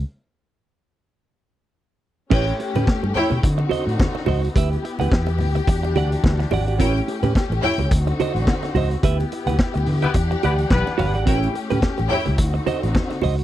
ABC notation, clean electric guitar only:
X:1
M:4/4
L:1/16
Q:"Swing 16ths" 1/4=107
K:Amix
V:1 name="Clean electric guitar"
z16 | [CGB] z2 [CGB] z6 [F=c_e] z3 [Fce] z | [GBe] z2 [GBf] z6 [Gdf] z3 [Gdf] [Gdf] | [CGB] z2 [CGB] z6 [F=c_e] z3 [Fce] z |
[GBe] z2 [GBf] z6 [Gdf] z3 [Gdf] [Gdf] | [CGB] z2 [CGB] z6 [F=c_e] z3 [Fce] z |]